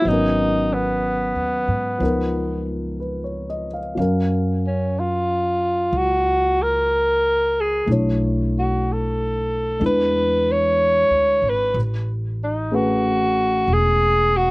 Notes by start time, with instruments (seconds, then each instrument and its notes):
0.01 upright bass G#1, grand piano F#3 B3
0.08 grand piano C#4, alto saxophone D#4
0.12 grand piano A#4
0.74 alto saxophone B3
1.35 upright bass D#2
1.68 upright bass G#2
1.98 upright bass C#2, grand piano F3 B3 D#4
2.04 grand piano A#4
3.00 grand piano B4
3.24 grand piano C#5
3.50 grand piano D#5
3.74 grand piano F5
3.95 upright bass F#2, grand piano F#3 C#4 F5
4.01 grand piano A#4
4.67 alto saxophone C#4
5.00 alto saxophone F4
5.93 upright bass C#2
5.98 alto saxophone F#4
6.63 alto saxophone A#4
7.61 alto saxophone G#4
7.86 upright bass B1, grand piano A3 D4 E4
7.92 grand piano C#5
8.59 alto saxophone F#4
8.93 alto saxophone A4
9.79 upright bass E2, grand piano G#3 D4 E4
9.85 grand piano B4, alto saxophone B4
10.52 alto saxophone C#5
11.10 upright bass D2
11.42 upright bass G#1
11.49 alto saxophone B4
11.74 upright bass A1
12.44 alto saxophone D#4
12.71 grand piano A3 C#4 G#4 B4
12.75 alto saxophone F#4
13.68 upright bass E1
13.73 alto saxophone G#4
14.37 alto saxophone F#4